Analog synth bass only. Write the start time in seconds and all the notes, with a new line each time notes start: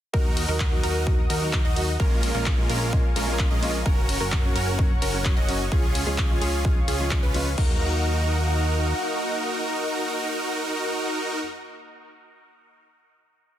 0.14 D#2
0.48 D#2
0.83 D#2
1.30 D#2
1.65 D#2
2.00 A#1
2.35 A#1
2.70 A#1
3.16 A#1
3.51 A#1
4.21 F#1
4.56 F#1
5.02 F#1
5.37 F#1
5.72 C#2
6.07 C#2
6.42 C#2
6.88 C#2
7.23 C#2
7.58 D#2